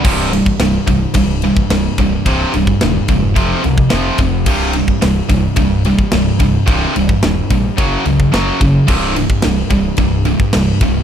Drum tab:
CC |x---------------|----------------|x---------------|----------------|
RD |--x-x-x-x-x-x-x-|x-x-x-x-x-x-x-x-|--x-x-x-x-x-x-x-|x-x-x-x-x-x-x-x-|
SD |----o-------o---|----o-------o---|----o-------o---|----o-------o---|
BD |o--o--o-o--o--o-|o--o--o-o--o--o-|o--o--o-o--o--o-|o--o--o-o--o--o-|

CC |x---------------|
RD |--x-x-x-x-x-x-x-|
SD |----o-------o---|
BD |o--o--o-o--o--o-|